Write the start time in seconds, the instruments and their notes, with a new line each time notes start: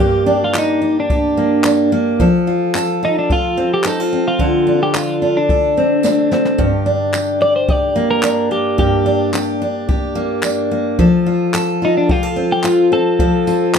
Already playing: steel-string acoustic guitar A#3 D4, clean electric guitar G4
0.00 steel-string acoustic guitar G2 G4, kick
0.26 steel-string acoustic guitar D4
0.44 clean electric guitar F4
0.54 clean electric guitar D#4, steel-string acoustic guitar G4, clap, tambourine
0.82 steel-string acoustic guitar D4
1.00 clean electric guitar D4
1.10 steel-string acoustic guitar G4, kick
1.37 steel-string acoustic guitar A#3
1.64 steel-string acoustic guitar D4, clap, tambourine
1.92 steel-string acoustic guitar A#3
2.20 steel-string acoustic guitar F3 A4, kick
2.47 steel-string acoustic guitar F4
2.75 steel-string acoustic guitar A4, clap, tambourine
3.03 clean electric guitar D#4, steel-string acoustic guitar F4
3.19 clean electric guitar D4
3.30 clean electric guitar F4, steel-string acoustic guitar A4, kick
3.57 steel-string acoustic guitar C4
3.74 clean electric guitar G4
3.84 steel-string acoustic guitar D#4, clean electric guitar A4, clap, tambourine
4.00 steel-string acoustic guitar F4
4.13 steel-string acoustic guitar C4
4.28 clean electric guitar F4
4.39 steel-string acoustic guitar D3 A4, kick
4.67 steel-string acoustic guitar D4
4.83 clean electric guitar G4
4.94 clean electric guitar F4, steel-string acoustic guitar A4, clap, tambourine
5.22 steel-string acoustic guitar D4
5.37 clean electric guitar D4
5.49 steel-string acoustic guitar A4, kick
5.77 steel-string acoustic guitar C4
6.03 steel-string acoustic guitar D4, snare, tambourine
6.32 steel-string acoustic guitar C4, snare
6.45 snare
6.58 steel-string acoustic guitar G2 G4, kick
6.86 steel-string acoustic guitar D4
7.13 steel-string acoustic guitar G4, clap, tambourine
7.41 steel-string acoustic guitar D4, clean electric guitar D5
7.56 clean electric guitar C5
7.68 steel-string acoustic guitar G4, clean electric guitar D5, kick
7.96 steel-string acoustic guitar A#3
8.11 clean electric guitar A#4
8.23 steel-string acoustic guitar D4, clap, tambourine
8.51 steel-string acoustic guitar A#3, clean electric guitar G4
8.78 steel-string acoustic guitar G2 G4, clean electric guitar G4, kick
9.06 steel-string acoustic guitar D4
9.34 steel-string acoustic guitar G4, clap, tambourine
9.62 steel-string acoustic guitar D4
9.89 steel-string acoustic guitar G4, kick
10.15 steel-string acoustic guitar A#3
10.43 steel-string acoustic guitar D4, clap, tambourine
10.71 steel-string acoustic guitar A#3
10.99 steel-string acoustic guitar F3 A4, kick
11.26 steel-string acoustic guitar F4
11.54 steel-string acoustic guitar A4, clap, tambourine
11.82 clean electric guitar D#4, steel-string acoustic guitar F4
11.97 clean electric guitar D4
12.09 clean electric guitar F4, steel-string acoustic guitar G4, kick
12.23 steel-string acoustic guitar A4
12.36 steel-string acoustic guitar C4
12.52 clean electric guitar G4
12.64 steel-string acoustic guitar F4, clean electric guitar F4, clap, tambourine
12.92 steel-string acoustic guitar C4, clean electric guitar A4
13.19 steel-string acoustic guitar F3 A4, kick
13.47 steel-string acoustic guitar F4, tambourine
13.75 steel-string acoustic guitar G4, clap, tambourine